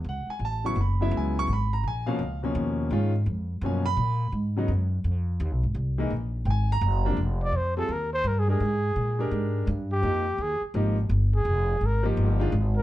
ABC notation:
X:1
M:4/4
L:1/16
Q:"Swing" 1/4=168
K:G#phr
V:1 name="Trumpet"
z16 | z16 | z16 | z16 |
z16 | [K:Fdor] z2 d2 c2 =A2 B2 c2 (3B2 _A2 A2- | A8 z6 G2- | G4 A2 z8 A2- |
A4 B2 z8 B2 |]
V:2 name="Grand piano"
f2 g2 a2 c'2 b2 e2 g2 c'2 | b2 ^a2 g2 ^e4 z6 | z8 g2 b6 | z16 |
z8 [=g^g]2 _b4- b z | [K:Fdor] z16 | z16 | z16 |
z16 |]
V:3 name="Grand piano"
z6 [C,F,B,E]2 z2 [C,F,B,E]6 | z6 [B,,^E,^A,C]2 z2 [B,,E,A,C]6 | [D,G,C^E]2 z6 [B,,^E,^A,C]2 z6 | z2 [C,F,B,D]2 z12 |
z2 [E,G,_B,D]2 z8 z2 [=C,^E,B,=D]2 | [K:Fdor] z6 [G,CFA]2 z6 [A,DGB]2 | z6 [A,DGB]6 z4 | [F,B,EG]2 z6 [F,B,EG]2 z6 |
z6 [F,B,EG]4 [E,A,DF]2 z4 |]
V:4 name="Upright bass" clef=bass
C,,2 z2 A,,,4 F,,,4 C,,4 | G,,,4 ^A,,,4 C,,4 D,,4 | G,,4 ^E,,4 F,,4 ^A,,4 | G,,4 F,,4 ^E,,4 (3D,,2 B,,,2 G,,,2 |
=C,,4 _B,,,4 G,,,4 F,,,4 | [K:Fdor] F,,,4 F,,4 E,,4 G,,4 | A,,4 B,,4 A,,4 G,,4 | F,,4 E,,2 z2 A,,,4 G,,,4 |
F,,,4 A,,,4 G,,,4 A,,,4 |]